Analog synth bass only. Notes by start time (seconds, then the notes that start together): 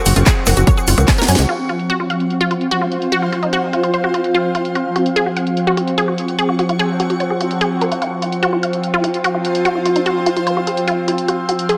0.06 F#1
0.16 F#1
0.47 F#1
0.57 F#1
0.88 F#1
0.98 C#2
1.28 F#2
1.39 C#2